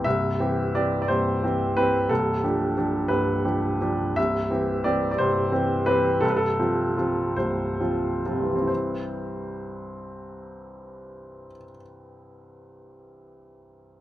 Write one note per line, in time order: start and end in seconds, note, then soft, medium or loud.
0.04 0.39 C1 soft
0.04 0.39 C2 soft
0.04 0.74 E5 medium
0.40 0.71 E3 soft
0.40 0.71 C4 soft
0.40 0.71 G4 soft
0.75 1.06 E3 soft
0.75 1.06 C4 soft
0.75 1.06 G4 soft
0.75 1.00 D5 medium
1.02 1.09 D5 soft
1.08 1.42 C1 soft
1.08 1.42 C2 soft
1.08 1.76 C5 medium
1.43 1.73 E3 soft
1.43 1.74 C4 soft
1.43 1.74 G4 soft
1.77 2.07 E3 soft
1.77 2.07 C4 soft
1.77 2.07 G4 soft
1.77 2.10 B4 medium
2.09 2.43 C1 soft
2.09 2.42 C2 soft
2.09 3.10 A4 medium
2.43 2.73 F3 soft
2.43 2.74 D4 soft
2.43 2.74 G4 soft
2.77 3.07 F3 soft
2.77 3.07 D4 soft
2.77 3.08 G4 soft
3.08 3.44 C1 soft
3.08 3.43 C2 soft
3.08 4.16 B4 medium
3.44 3.77 F3 soft
3.44 3.77 D4 soft
3.44 3.78 G4 soft
3.81 4.13 F3 soft
3.81 4.13 D4 soft
3.81 4.14 G4 soft
4.16 4.50 C1 soft
4.16 4.50 C2 soft
4.16 4.85 E5 medium
4.50 4.81 E3 soft
4.50 4.82 C4 soft
4.50 4.82 G4 soft
4.84 5.15 E3 soft
4.84 5.15 C4 soft
4.84 5.16 G4 soft
4.84 5.10 D5 medium
5.11 5.19 D5 medium
5.18 5.51 C1 soft
5.18 5.51 C2 soft
5.18 5.86 C5 medium
5.52 5.83 E3 soft
5.52 5.83 C4 soft
5.52 5.83 G4 soft
5.86 6.19 E3 soft
5.86 6.19 C4 soft
5.86 6.19 G4 soft
5.86 6.22 B4 medium
6.21 6.58 C1 soft
6.21 6.58 C2 soft
6.21 6.30 A4 medium
6.30 6.38 B4 medium
6.37 7.37 A4 medium
6.59 6.94 F3 soft
6.59 6.94 C4 soft
6.59 6.94 F4 soft
6.97 7.34 F3 soft
6.97 7.34 C4 soft
6.97 7.34 F4 soft
7.36 7.79 C1 soft
7.36 7.78 C2 soft
7.36 8.66 C5 medium
7.80 8.21 F3 soft
7.80 8.22 C4 soft
7.80 8.22 F4 soft
8.26 8.64 F3 soft
8.26 8.54 C4 soft
8.26 8.65 F4 soft
8.31 11.44 C2 soft
8.37 11.50 G2 soft
8.43 11.57 E3 soft
8.49 11.63 G3 soft
8.56 11.69 C4 soft
8.62 11.75 E4 soft
8.67 11.81 C5 soft